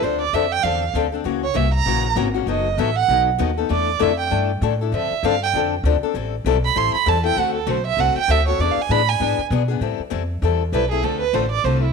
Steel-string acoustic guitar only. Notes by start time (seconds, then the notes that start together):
0.03 D3 F3 C4 D4 A4
0.33 D3 F3 C4 D4 A4
0.64 D3 F3 C4 D4 A4
0.95 D3 F3 C4 D4 A4
1.12 C4 D4 A4
1.24 C#3 E3 A#3 C#4 F#4
1.54 C#3 E3 A#3 C#4 F#4
1.86 C#3 E3 A#3 C#4 F#4
2.16 C#3 E3 A#3 C#4 F#4
2.34 A#3 C#4 F#4
2.47 D#3 F#3 B3 D#4 A4
2.78 D#3 F#3 B3 D#4 A4
3.09 D#3 F#3 B3 D#4 A4
3.38 D#3 F#3 B3 D#4 A4
3.58 B3 D#4 A4
3.69 E3 A3 D4 E4 A4
3.99 E3 A3 D4 E4 A4
4.30 E3 A3 D4 E4 A4
4.62 E3 A3 D4 E4 A4
4.81 D4 E4 A4
4.92 D3 F3 C4 D4 A4
5.23 D3 F3 C4 D4 A4
5.55 D3 F3 C4 D4 A4
5.85 D3 F3 C4 D4 A4
6.03 C4 D4 A4
6.15 E3 G3 C4 E4 A4
6.46 E3 G3 C4 E4 A4
6.76 E3 G3 C4 E4 A4
7.06 E3 G3 C4 E4 A4
7.24 C4 E4 A4
7.36 D3 A3 C4 F#4 A4
7.67 D3 A3 C4 F#4 A4
7.98 D3 A3 C4 F#4 A4
8.29 D3 A3 C4 F#4 A4
8.47 C4 F#4 A4
8.60 E3 B3 D4 G#4
8.90 E3 B3 D4 G#4
9.20 E3 B3 D4 G#4
9.51 E3 B3 D4 G#4
9.68 B3 D4 G#4
9.81 E3 G3 C4 E4 A4
10.10 E3 G3 C4 E4 A4
10.42 E3 G3 C4 E4 A4
10.73 E3 G3 C4 E4 A4
10.91 C4 E4 A4
11.03 D3 A3 C4 F4 A4
11.33 D3 A3 C4 F4 A4
11.65 D3 A3 C4 F4 A4